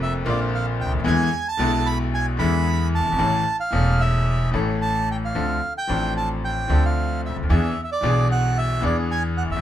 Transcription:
0.00 0.22 F1 medium
0.00 0.22 F1 loud
0.00 0.23 F2 loud
0.00 0.22 D3 medium
0.00 0.22 A#3 medium
0.00 0.23 C4 medium
0.00 0.24 F4 medium
0.00 0.14 E5 loud
0.24 0.85 A#1 loud
0.24 1.02 A#1 loud
0.24 1.02 A#2 loud
0.24 1.01 D3 medium
0.24 1.01 A#3 medium
0.24 1.02 C4 medium
0.24 1.02 F4 loud
0.29 0.40 D5 medium
0.54 0.66 F5 medium
0.81 0.92 G5 loud
0.85 0.92 C#2 medium
0.91 0.98 D2 medium
0.91 0.99 D2 medium
0.98 1.05 D#2 medium
1.04 1.27 E2 loud
1.04 1.28 E2 loud
1.04 1.27 D3 medium
1.04 1.27 E3 loud
1.04 1.27 G#3 medium
1.04 1.27 B3 medium
1.04 1.28 E4 medium
1.04 1.47 G#5 loud
1.48 1.88 A5 loud
1.57 2.35 B1 loud
1.57 2.35 B1 medium
1.57 2.35 B2 loud
1.57 2.34 D3 medium
1.57 2.35 G#3 medium
1.57 2.36 B3 medium
1.61 2.36 E4 loud
1.86 1.98 B5 loud
2.15 2.26 G#5 loud
2.37 3.15 E2 medium
2.37 2.99 E2 loud
2.37 3.14 D3 medium
2.37 3.15 E3 loud
2.37 3.15 G#3 medium
2.37 3.15 B3 medium
2.37 2.89 B5 loud
2.41 3.16 E4 medium
2.95 3.56 A5 loud
2.99 3.06 F#1 medium
2.99 3.05 F#1 medium
3.06 3.12 G1 medium
3.12 3.19 G#1 medium
3.18 3.42 A1 medium
3.18 3.42 A1 loud
3.18 3.41 A2 medium
3.18 3.41 E3 medium
3.18 3.42 A3 medium
3.18 3.42 C#4 medium
3.18 3.42 A4 medium
3.60 4.01 F5 loud
3.71 4.49 E1 loud
3.71 4.49 E1 medium
3.71 4.49 E2 loud
3.71 4.48 E3 medium
3.71 4.49 A3 medium
3.71 4.49 C#4 medium
3.71 4.50 A4 medium
4.01 4.50 E5 loud
4.51 5.31 A1 loud
4.51 5.31 A1 medium
4.51 5.31 A2 medium
4.51 5.30 E3 medium
4.51 5.30 A3 medium
4.51 5.31 C#4 medium
4.55 5.32 A4 medium
4.82 5.09 A5 loud
5.11 5.17 G5 medium
5.25 5.73 F5 medium
5.35 5.58 D2 medium
5.35 5.58 D2 loud
5.35 5.57 D3 medium
5.35 5.57 F3 medium
5.35 5.57 C4 medium
5.35 5.57 D4 medium
5.35 5.58 A4 medium
5.78 6.14 G5 loud
5.87 6.66 A1 medium
5.87 6.66 A1 loud
5.87 6.65 A2 medium
5.87 6.64 F3 medium
5.87 6.65 C4 medium
5.87 6.66 D4 medium
5.91 6.67 A4 medium
6.17 6.29 A5 medium
6.45 6.85 G5 loud
6.68 7.29 D2 loud
6.68 7.36 D2 medium
6.68 7.46 D3 medium
6.68 7.45 F3 medium
6.68 7.45 C4 medium
6.68 7.46 D4 medium
6.72 7.47 A4 medium
6.85 7.21 F5 medium
7.26 7.36 C#2 medium
7.26 7.37 E5 medium
7.30 7.36 C#2 soft
7.37 7.42 D2 medium
7.37 7.43 D2 medium
7.43 7.49 D#2 medium
7.43 7.50 D#2 medium
7.49 7.72 E2 loud
7.49 7.72 E3 medium
7.49 7.72 B3 medium
7.49 7.72 D4 medium
7.49 7.72 G#4 medium
7.49 7.81 E5 medium
7.84 7.90 E5 medium
7.92 8.28 D5 loud
8.01 8.79 B1 medium
8.01 8.79 B1 loud
8.01 8.79 B2 loud
8.01 8.78 E3 medium
8.01 8.79 B3 medium
8.01 8.79 D4 medium
8.05 8.80 G#4 medium
8.31 8.58 F#5 loud
8.58 8.84 E5 loud
8.81 9.59 E2 medium
8.81 9.42 E2 loud
8.81 8.82 E3 medium
8.81 9.59 E3 medium
8.81 9.58 B3 medium
8.81 9.59 D4 medium
8.81 9.59 G#4 medium
8.86 8.97 D5 medium
9.11 9.23 G#5 loud
9.38 9.43 F#5 medium
9.43 9.49 F#1 soft
9.43 9.50 F#1 medium
9.50 9.55 G1 medium
9.50 9.56 G1 medium
9.50 9.61 E5 medium
9.56 9.61 G#1 medium

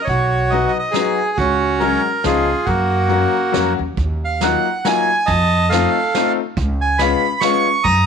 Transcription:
0.02 0.51 C#5 medium
0.02 0.08 D#5 medium
0.07 0.64 B1 medium
0.07 0.72 F#4 medium
0.07 kick medium
0.07 closed hi-hat soft
0.50 0.75 F#3 medium
0.50 0.76 B3 medium
0.50 0.76 D#4 medium
0.50 0.76 F#4 medium
0.50 0.66 D#5 medium
0.50 closed hi-hat soft
0.67 0.77 D#5 medium
0.79 0.94 D#5 medium
0.91 1.17 F#3 medium
0.91 1.18 B3 medium
0.91 1.18 D#4 medium
0.91 1.37 G#4 medium
0.91 snare medium
0.91 closed hi-hat soft
0.96 1.19 F#4 medium
1.37 1.95 C#2 medium
1.37 2.02 C#4 medium
1.37 1.82 F#4 medium
1.37 kick medium
1.37 closed hi-hat soft
1.79 2.04 F#3 medium
1.79 2.05 G#3 medium
1.79 2.05 C#4 medium
1.79 2.05 F#4 medium
1.79 2.25 A#4 medium
1.79 closed hi-hat soft
2.24 2.53 C#2 loud
2.24 2.48 F3 medium
2.24 2.48 G#3 medium
2.24 2.48 C#4 medium
2.24 2.48 D#4 medium
2.24 2.65 F4 medium
2.24 2.69 G#4 medium
2.24 snare medium
2.24 closed hi-hat soft
2.65 3.24 F#2 loud
2.65 3.74 A#3 soft
2.65 3.73 F#4 medium
2.65 kick medium
2.65 closed hi-hat soft
3.09 3.33 F#3 medium
3.09 3.34 A#3 medium
3.09 3.34 C#4 medium
3.09 3.34 F#4 medium
3.09 closed hi-hat soft
3.52 3.76 F2 medium
3.52 3.77 F#3 medium
3.52 3.77 A#3 medium
3.52 3.78 C#4 medium
3.52 3.78 F#4 medium
3.52 snare medium
3.52 closed hi-hat soft
3.79 3.97 D#2 medium
3.97 4.54 D#2 medium
3.97 kick medium
3.97 closed hi-hat soft
4.25 4.43 F5 medium
4.41 4.65 F#3 medium
4.41 4.66 A#3 medium
4.41 4.66 D#4 medium
4.41 4.66 F4 medium
4.41 4.87 F#5 medium
4.41 snare medium
4.41 closed hi-hat soft
4.85 5.08 F#3 medium
4.85 5.09 A#3 medium
4.85 5.09 D#4 medium
4.85 5.09 F4 medium
4.85 5.30 G#5 loud
4.85 snare medium
4.85 closed hi-hat medium
5.26 5.84 F2 loud
5.26 5.90 D#5 medium
5.26 5.72 A5 loud
5.26 kick medium
5.26 closed hi-hat soft
5.70 5.95 A3 medium
5.70 5.96 C4 medium
5.70 5.95 D#4 medium
5.70 6.33 A4 medium
5.70 6.33 F5 medium
5.70 snare medium
5.70 closed hi-hat medium
5.74 5.96 F4 medium
6.15 6.38 A3 medium
6.15 6.38 C4 medium
6.15 6.38 D#4 medium
6.15 6.39 F4 medium
6.15 snare medium
6.15 closed hi-hat soft
6.57 7.13 C#2 loud
6.57 kick medium
6.57 closed hi-hat soft
6.81 7.01 G#5 medium
6.98 7.23 G#3 medium
6.98 7.23 B3 medium
6.98 7.24 C#4 medium
6.98 7.24 F4 medium
6.98 7.43 B5 medium
6.98 snare medium
6.98 closed hi-hat soft
7.40 7.66 G#3 medium
7.40 7.66 B3 medium
7.40 7.66 C#4 medium
7.40 7.67 F4 medium
7.40 7.86 C#6 medium
7.40 snare medium
7.40 closed hi-hat medium
7.84 8.06 F#2 loud
7.84 8.06 A#5 medium
7.84 8.06 D#6 loud
7.84 kick medium
7.84 closed hi-hat soft

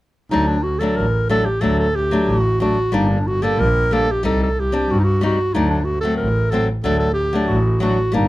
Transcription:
0.31 0.70 D2 medium
0.31 0.56 F#3 medium
0.31 0.56 A3 medium
0.31 0.57 D4 medium
0.31 0.49 D#4 medium
0.48 0.64 D4 medium
0.63 0.80 F#4 medium
0.79 1.05 F#3 medium
0.79 1.06 A3 medium
0.79 0.98 A4 medium
0.83 1.06 D4 medium
0.96 1.36 A1 medium
0.96 1.29 A#4 medium
1.29 1.46 F#3 medium
1.29 1.46 A3 medium
1.29 1.47 D4 medium
1.29 1.47 A4 medium
1.46 1.63 G4 medium
1.61 2.01 D2 medium
1.61 1.86 F#3 medium
1.61 1.87 A3 medium
1.61 1.87 D4 medium
1.61 1.78 A4 medium
1.79 1.97 A4 medium
1.95 2.31 G4 medium
2.11 2.36 F#3 medium
2.11 2.36 A3 medium
2.11 2.37 D4 medium
2.27 2.66 A1 medium
2.27 2.60 F#4 medium
2.60 2.76 F#3 medium
2.60 2.77 A3 medium
2.60 2.77 D4 medium
2.60 2.96 F#4 medium
2.92 3.32 G1 medium
2.92 3.17 G3 medium
2.92 3.17 A#3 medium
2.92 3.18 D4 medium
2.92 3.10 D#4 medium
3.10 3.29 D4 medium
3.27 3.44 F#4 medium
3.42 3.66 G3 medium
3.42 3.67 A#3 medium
3.42 3.67 D4 medium
3.42 3.61 A4 medium
3.57 3.97 A#1 loud
3.57 3.94 A#4 medium
3.91 4.07 G3 medium
3.91 4.08 A#3 medium
3.91 4.08 D4 medium
3.91 4.13 A4 medium
4.11 4.25 G4 medium
4.23 4.62 C2 medium
4.23 4.47 G3 medium
4.23 4.48 C4 medium
4.23 4.48 D#4 medium
4.23 4.39 A4 medium
4.43 4.62 A4 medium
4.60 4.92 G4 medium
4.72 4.97 G3 medium
4.72 4.97 C4 medium
4.72 4.97 D4 medium
4.89 5.28 G2 medium
4.89 5.01 F#4 medium
4.99 5.06 D#4 medium
5.04 5.22 F#4 medium
5.21 5.37 G3 medium
5.21 5.38 C4 medium
5.21 5.38 D#4 medium
5.21 5.56 F#4 medium
5.54 5.92 D2 medium
5.54 5.78 F#3 medium
5.54 5.78 A3 medium
5.54 5.79 D4 medium
5.54 5.69 D#4 medium
5.70 5.86 D4 medium
5.84 6.00 F#4 medium
6.01 6.27 F#3 medium
6.01 6.16 A4 medium
6.05 6.28 A3 medium
6.05 6.28 C4 medium
6.17 6.58 A1 medium
6.17 6.52 A#4 medium
6.50 6.68 F#3 medium
6.50 6.68 A3 medium
6.50 6.68 C4 medium
6.50 6.67 A4 medium
6.83 7.22 D2 medium
6.83 7.08 F#3 medium
6.83 7.08 A3 medium
6.83 7.09 D4 medium
6.83 6.99 A4 medium
6.99 7.13 A4 medium
7.14 7.48 G4 medium
7.33 7.57 F#3 medium
7.33 7.57 A3 medium
7.33 7.58 D4 medium
7.47 7.87 A1 loud
7.47 7.80 F#4 medium
7.80 7.97 F#3 medium
7.80 7.97 A3 medium
7.80 7.98 D4 medium
7.80 8.11 F#4 medium
8.12 8.28 G1 medium
8.12 8.28 G3 medium
8.12 8.28 A#3 medium
8.12 8.28 D4 medium
8.12 8.28 D#4 medium

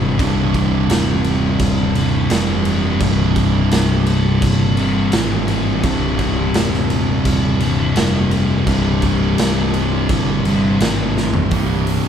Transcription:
0.00 0.15 G#1 loud
0.00 0.18 C2 medium
0.00 0.18 G2 medium
0.00 0.20 C3 loud
0.00 0.21 C3 medium
0.19 0.86 C1 loud
0.19 1.97 C2 medium
0.19 1.94 G2 medium
0.19 1.95 C3 loud
0.19 kick loud
0.19 crash medium
0.54 kick medium
0.54 crash medium
0.89 1.56 D#1 medium
0.89 snare loud
0.89 crash medium
1.24 crash medium
1.59 2.27 D#1 medium
1.59 kick loud
1.59 crash medium
1.95 2.30 C2 medium
1.95 2.29 G2 medium
1.95 2.32 C3 medium
1.95 crash medium
2.30 2.97 F1 medium
2.30 3.00 C2 medium
2.30 3.00 G2 medium
2.30 3.02 C3 loud
2.30 snare loud
2.30 crash medium
2.65 crash medium
3.00 3.68 C1 loud
3.00 4.79 C2 medium
3.00 4.76 G2 loud
3.00 4.77 C3 loud
3.00 kick loud
3.00 crash medium
3.36 kick loud
3.36 crash medium
3.71 4.38 C1 medium
3.71 snare loud
3.71 crash medium
4.06 crash medium
4.42 5.09 G1 medium
4.42 kick loud
4.42 crash medium
4.77 5.12 C2 medium
4.77 5.11 G2 medium
4.77 5.15 C3 medium
4.77 crash medium
5.12 5.80 G#1 medium
5.12 5.83 C2 medium
5.12 5.82 G2 medium
5.12 5.86 C3 medium
5.12 snare loud
5.12 crash medium
5.48 crash medium
5.83 6.51 C1 loud
5.83 7.61 C2 medium
5.83 7.59 G2 medium
5.83 7.59 C3 medium
5.83 kick loud
5.83 crash medium
6.19 kick loud
6.19 crash medium
6.54 7.21 D#1 medium
6.54 snare loud
6.54 crash medium
6.74 snare soft
6.90 crash medium
7.25 7.92 D#1 medium
7.25 kick loud
7.25 crash medium
7.59 7.94 C2 medium
7.59 7.94 G2 medium
7.59 7.97 C3 medium
7.59 crash medium
7.95 8.63 F1 loud
7.95 8.66 C2 medium
7.95 8.65 G2 medium
7.95 8.68 C3 medium
7.95 snare loud
7.95 crash medium
8.31 crash medium
8.66 9.34 C1 loud
8.66 10.43 C2 medium
8.66 10.43 G2 medium
8.66 10.43 C3 loud
8.66 kick loud
8.66 crash medium
9.02 kick medium
9.02 crash medium
9.38 10.05 C1 medium
9.38 snare loud
9.38 crash medium
9.74 crash medium
10.09 10.77 G1 medium
10.09 kick loud
10.09 crash medium
10.44 10.78 C2 medium
10.44 10.79 G2 medium
10.44 10.78 C3 medium
10.44 crash medium
10.79 11.48 G#1 medium
10.79 11.49 C2 medium
10.79 11.50 G2 medium
10.79 11.51 C3 medium
10.79 snare loud
10.79 crash medium
11.17 snare medium
11.34 floor tom medium
11.51 11.98 C1 medium
11.51 12.08 C2 medium
11.51 12.08 G2 medium
11.51 12.08 C3 loud
11.51 kick loud
11.51 open hi-hat medium
11.87 open hi-hat medium

